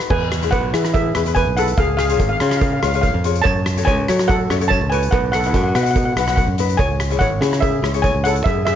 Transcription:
Already playing: D#4 F#4 B4
0.10 E2 B4 G#5, kick, crash, cowbell
0.32 cross-stick, closed hi-hat
0.42 E4 G#4 B4, closed hi-hat
0.51 B1 B4 F#5, kick, closed hi-hat, cowbell
0.73 E3 E4 G#4 B4, cross-stick, closed hi-hat
0.85 cross-stick, closed hi-hat
0.94 G#4 E5, kick, closed hi-hat, cowbell
1.15 E2 E4 G#4 B4, cross-stick, closed hi-hat
1.26 E4 G#4 B4, closed hi-hat
1.35 B4 G#5, kick, closed hi-hat, cowbell
1.47 B1
1.57 E4 G#4 A4 B4 F#5, closed hi-hat
1.68 closed hi-hat
1.77 C#2 G#4 F5, kick, closed hi-hat, cowbell
1.97 G#4 F5, cross-stick, closed hi-hat
2.06 F4 F5, closed hi-hat
2.10 G#4 C#5 F5
2.19 G#1 F5, kick, closed hi-hat, cowbell
2.29 F5
2.37 C#3 F4 F5, cross-stick, closed hi-hat
2.42 G#4 C#5 F5
2.50 F5, cross-stick, closed hi-hat
2.57 F5
2.61 F5, kick, closed hi-hat, cowbell
2.73 F5
2.80 C#2 F4 G#4 C#5 F5, cross-stick, closed hi-hat
2.88 F5
2.94 F4 G#4 C#5 F5, closed hi-hat
3.01 F5, kick, closed hi-hat, cowbell
3.14 F2
3.24 F4 G#4 C#5, closed hi-hat
3.35 closed hi-hat
3.42 F#2 C#5 A5, kick, closed hi-hat, cowbell
3.66 cross-stick, closed hi-hat
3.77 F#4 A4 C#5, closed hi-hat
3.85 C#2 C#5 G#5, kick, closed hi-hat, cowbell
4.08 F#3 F#4 A4 C#5, cross-stick, closed hi-hat
4.19 cross-stick, closed hi-hat
4.28 A4 F#5, kick, closed hi-hat, cowbell
4.50 F#2 F#4 A4 C#5, cross-stick, closed hi-hat
4.61 F#4 A4 C#5, closed hi-hat
4.68 C#5 A5, kick, closed hi-hat, cowbell
4.81 C#2
4.90 F#4 A4 B4 G#5, closed hi-hat
4.94 C#5
5.03 closed hi-hat
5.11 B1 B4 F#5, kick, closed hi-hat, cowbell
5.32 A4 F#5, cross-stick, closed hi-hat
5.41 F#5, closed hi-hat
5.45 D#4 F#4 B4 F#5
5.54 F#2 F#5, kick, closed hi-hat, cowbell
5.63 F#5
5.68 F#5
5.75 B2 D#4 F#4 B4 F#5, cross-stick, closed hi-hat
5.83 F#5, closed hi-hat
5.91 F#5
5.96 F#5, kick, closed hi-hat, cowbell
6.05 F#5
6.13 B1 F#5
6.17 D#4 F#4 B4 F#5, cross-stick, closed hi-hat
6.27 D#4 F#4 B4 F#5, cross-stick, closed hi-hat
6.36 F#5, kick, closed hi-hat, cowbell
6.47 F#2
6.58 D#4 F#4 B4, closed hi-hat
6.69 closed hi-hat
6.77 C#2 C#5 G#5, kick, closed hi-hat, cowbell
7.00 cross-stick, closed hi-hat
7.11 E4 G#4 C#5, closed hi-hat
7.19 G#1 C#5 F#5, kick, closed hi-hat, cowbell
7.41 C#3 E4 G#4 C#5, cross-stick, closed hi-hat
7.53 cross-stick, closed hi-hat
7.61 G#4 E5, kick, closed hi-hat, cowbell
7.82 C#2 E4 G#4 C#5, cross-stick, closed hi-hat
7.94 E4 G#4 C#5, closed hi-hat
8.02 C#5 G#5, kick, closed hi-hat, cowbell
8.15 C#2
8.24 E4 G#4 A4 C#5 F#5, closed hi-hat
8.36 closed hi-hat
8.44 F#2 G#4 E5, kick, closed hi-hat, cowbell
8.65 G#4 E5, cross-stick, closed hi-hat

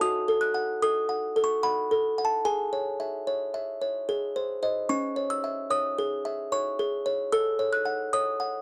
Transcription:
0.01 F#4 D#6
0.28 A4
0.41 F#6
0.54 F#5
0.82 A4 D#6
1.09 F#5
1.36 A4
1.44 C#6
1.63 F#5 B5
1.91 A4
2.18 F#5
2.25 A5
2.45 G#4 G#5
2.73 C#5
3.00 E5
3.27 C#5
3.54 E5
3.82 C#5
4.09 G#4
4.36 C5
4.63 C5 D#5
4.89 C#4 C#6
5.16 C#5
5.30 E6
5.44 E5
5.70 C#5 D#6
5.98 G#4
6.25 E5
6.52 C#5 C#6
6.79 G#4
7.06 C#5
7.32 A4 E6
7.59 C#5
7.73 F#6
7.85 F#5
8.13 C#5 D#6
8.40 F#5

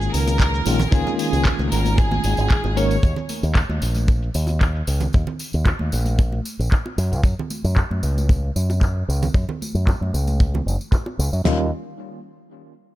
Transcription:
Already playing: D#3 G#3 A#3 C#4 F4 G#4
0.01 closed hi-hat, cabasa
0.14 C#2 A#4, open hi-hat, tambourine
0.27 closed hi-hat, tambourine, high bongo, cabasa
0.40 kick, clap, closed hi-hat, tambourine, cabasa
0.54 closed hi-hat, cabasa
0.66 A#1 D#3 G#3 A#3 C#4 F4, open hi-hat, tambourine
0.79 closed hi-hat, tambourine, low conga, cabasa
0.91 C#2 D#3 G#3 A#3 C#4 F4 G#4, kick, closed hi-hat, tambourine, cabasa
1.07 closed hi-hat, low conga, cabasa
1.18 G#4, open hi-hat, tambourine
1.33 C#2, closed hi-hat, tambourine, cabasa
1.45 kick, clap, closed hi-hat, tambourine, high bongo, cabasa
1.59 C#2, closed hi-hat, high conga, cabasa
1.71 G#1 A#4, open hi-hat, tambourine
1.85 closed hi-hat, tambourine, high bongo, high conga, cabasa
1.97 G#4, kick, closed hi-hat, tambourine, cabasa
2.11 closed hi-hat, high conga, low conga, cabasa
2.24 G#1, open hi-hat, tambourine
2.37 G#1, closed hi-hat, tambourine, cabasa
2.50 kick, clap, closed hi-hat, tambourine, cabasa
2.64 G#1, closed hi-hat, high bongo, cabasa
2.76 D#3 G#3 A#3 C#4 A#4 C#5, open hi-hat, tambourine
2.91 closed hi-hat, tambourine, cabasa
3.03 D#2, kick, closed hi-hat, tambourine, cabasa
3.16 closed hi-hat, low conga, cabasa
3.29 open hi-hat, tambourine, high conga
3.43 D#2, closed hi-hat, tambourine, cabasa
3.55 kick, clap, closed hi-hat, tambourine, cabasa
3.69 D#2, closed hi-hat, high conga, cabasa
3.82 A#1, open hi-hat, tambourine
3.95 closed hi-hat, tambourine, high conga, cabasa
4.08 kick, closed hi-hat, tambourine, cabasa
4.22 closed hi-hat, cabasa
4.34 D#2, open hi-hat, tambourine
4.47 closed hi-hat, tambourine, high bongo, cabasa
4.61 kick, clap, closed hi-hat, tambourine, cabasa
4.75 closed hi-hat, cabasa
4.87 C#2, open hi-hat, tambourine
5.01 closed hi-hat, tambourine, low conga, cabasa
5.13 D#2, kick, closed hi-hat, tambourine, cabasa
5.27 closed hi-hat, low conga, cabasa
5.39 open hi-hat, tambourine
5.53 D#2, closed hi-hat, tambourine, cabasa
5.66 kick, clap, closed hi-hat, tambourine, high bongo, cabasa
5.79 D#2, closed hi-hat, high conga, cabasa
5.92 A#1, open hi-hat, tambourine
6.05 closed hi-hat, tambourine, high conga, cabasa
6.18 kick, closed hi-hat, tambourine, cabasa
6.32 closed hi-hat, high conga, cabasa
6.45 open hi-hat, tambourine
6.59 A#1, closed hi-hat, tambourine, cabasa
6.72 kick, clap, tambourine
6.86 closed hi-hat, high bongo, cabasa
6.98 F#2, open hi-hat, tambourine
7.12 C#2, closed hi-hat, tambourine, cabasa
7.23 F#2, kick, closed hi-hat, tambourine
7.38 closed hi-hat, low conga, cabasa
7.50 open hi-hat, tambourine, high conga
7.64 F#2, closed hi-hat, tambourine, cabasa
7.77 kick, clap, closed hi-hat, tambourine
7.90 F#2, closed hi-hat, high conga, cabasa
8.03 C#2, open hi-hat, tambourine
8.17 closed hi-hat, tambourine, high conga, cabasa
8.29 kick, tambourine
8.43 closed hi-hat, cabasa
8.56 F#2, open hi-hat, tambourine
8.70 tambourine, high bongo, cabasa
8.81 kick, clap, tambourine
8.96 closed hi-hat, cabasa
9.08 C#2, open hi-hat, tambourine
9.22 closed hi-hat, tambourine, low conga
9.34 F#2, kick, tambourine, cabasa
9.49 open hi-hat, low conga
9.61 open hi-hat, tambourine, high conga
9.74 F#2, closed hi-hat, tambourine, cabasa
9.87 kick, clap, tambourine, high bongo
10.01 F#2, closed hi-hat, high conga
10.14 C#2, open hi-hat, tambourine
10.27 closed hi-hat, tambourine, high conga, cabasa
10.40 kick, tambourine
10.54 closed hi-hat, high bongo, high conga, low conga
10.66 F#1, open hi-hat, tambourine
10.80 closed hi-hat, tambourine, cabasa
10.92 kick, clap, tambourine
11.06 closed hi-hat, high bongo
11.19 C#2, open hi-hat, tambourine
11.33 F#2, closed hi-hat, tambourine
11.44 D#2 D#3 G3 A#3 C#4 F4, snare, floor tom, crash

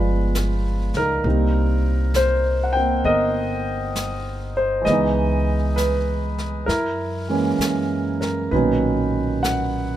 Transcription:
Already playing: G1 F3 G#3 B3 F4 B4 D5
0.35 snare, hi-hat pedal
0.94 C#2 A#4, snare
0.98 D#4
1.24 C2 G3 A#3 C4 D#4, brush sweep
2.14 C5, snare, hi-hat pedal
2.64 F#5
2.73 A#3 G5
2.77 C4
3.04 G1 A#4 D#5, brush sweep
3.96 snare, hi-hat pedal
4.57 C5
4.82 E3 G#3 D#5
4.86 C#2 B3 B4, brush sweep, snare
4.93 D#4
5.76 B4, snare, hi-hat pedal
6.38 snare
6.66 F#2 E4 A#4, brush sweep, snare
7.29 E3 G#3 A#3 C#4
7.59 F#2, snare, hi-hat pedal
8.21 A#4, snare
8.51 B1 A#2 D#3 F#3 C#4 D#4 B4, brush sweep
9.43 F#5, snare, hi-hat pedal

